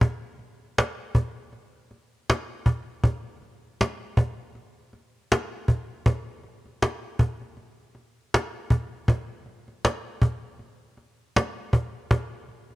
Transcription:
0.01 cajon bass
0.39 cajon slap
0.78 cajon slap
1.15 cajon bass
1.53 cajon slap
1.91 cajon slap
2.30 cajon slap
2.66 cajon bass
3.04 cajon bass
3.42 cajon slap
3.81 cajon slap
4.17 cajon bass
4.55 cajon slap
4.93 cajon slap
5.32 cajon slap
5.68 cajon bass
6.06 cajon bass
6.43 cajon slap
6.65 cajon slap
6.82 cajon slap
7.19 cajon bass
7.41 cajon slap
7.57 cajon slap
7.95 cajon slap
8.34 cajon slap
8.70 cajon bass
9.08 cajon bass
9.46 cajon slap
9.68 cajon slap
9.85 cajon slap
10.22 cajon bass
10.59 cajon slap
10.97 cajon slap
11.36 cajon slap
11.73 cajon bass
12.11 cajon bass
12.49 cajon slap
12.71 cajon slap

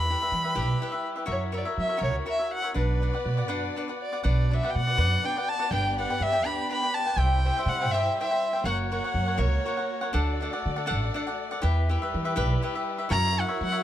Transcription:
Already playing: E2 G3 E4 B4 E5 B5
0.10 E4 G4 B4 E5
0.22 G4 B4 E5
0.32 E3
0.44 G4 B4 E5
0.55 B1 E4 G4 B4 E5
0.82 E4 G4 B4 E5
0.92 G4 B4 E5
1.16 G4 B4 E5
1.26 F#2 F#4 A#4 C#5 E5
1.32 C#5
1.52 F#4 A#4 C#5 E5
1.57 D5
1.65 A#4 C#5 E5
1.78 F#3 E5
1.88 A#4 C#5 E5
1.97 F#4 A#4 C#5 E5
2.01 C#2 C#5
2.26 F#4 A#4 C#5 E5
2.30 E5
2.39 A#4 C#5 E5
2.53 F#5
2.62 A#4 C#5 E5
2.74 B1 B3 D4 F#4 B4 D5 F#5
3.02 D4 B4 D5 F#5
3.13 B4 D5 F#5
3.26 B2
3.37 B4 D5 F#5
3.48 F#2 D4 B4 D5 F#5
3.76 D4 B4 D5 F#5
3.88 B4 D5 F#5
4.02 D5
4.13 B4 D5 F#5
4.23 B1 B3 D4 F#4 B4 D5 F#5
4.51 D4 B4 D5 E5 F#5
4.63 B4 D5 F#5
4.70 G5
4.75 B2 F#5
4.87 B4 D5 F#5
4.97 F#2 D4 B4 D5 F#5
5.24 D4 B4 D5 F#5 G5
5.37 B4 D5 F#5
5.49 A5
5.59 B4 D5 F#5
5.70 G1 D4 G4 B4 G5
5.98 D4 G4 B4 F#5 G5
6.10 G4 B4 G5
6.20 G2 E5
6.33 G4 B4 G5
6.43 D2 D4 G4 B4 G5 B5
6.70 D4 G4 B4 G5 B5
6.82 G4 B4 G5
6.94 A5
7.06 G4 B4 G5
7.17 C2 G3 E4 G4 C5 E5 G5
7.45 G4 C5 E5 G5
7.56 C5 E5 G5
7.66 C3 F#5
7.81 C5 E5 G5
7.89 G2 G4 E5
7.94 C5 E5 G5
8.20 G4 C5 E5 G5
8.31 C5 E5 G5
8.53 C5 E5 G5
8.62 F#1 A#3 F#4 A#4 C#5 F#5
8.92 F#4 A#4 C#5 F#5
9.04 A#4 C#5 F#5
9.14 F#2
9.26 A#4 C#5 F#5
9.37 C#2 F#4 A#4 C#5 F#5
9.65 F#4 A#4 C#5 F#5
9.77 A#4 C#5 F#5
10.01 A#4 C#5 F#5
10.12 D2 A3 D4 A4 D5 F#5
10.41 D4 A4 D5 F#5
10.53 A4 D5 F#5
10.66 D3
10.76 A4 D5 F#5
10.86 D4 A4 D5 F#5
10.91 A1
11.14 D4 A4 D5 F#5
11.27 A4 D5 F#5
11.51 A4 D5 F#5
11.62 E2 G3 E4 G4 B4 E5
11.89 E4 G4 B4 E5
12.02 G4 B4 E5
12.14 E3
12.25 G4 B4 E5
12.36 B1 E4 G4 B4 E5
12.62 E4 G4 B4 E5
12.75 G4 B4 E5
12.98 G4 B4 E5
13.09 F#2 F#4 A#4 C#5 E5 A#5
13.37 F#4 A#4 C#5 E5 F#5
13.48 A#4 C#5 E5
13.61 F#3 F#5
13.72 A#4 C#5 E5
13.77 F#5

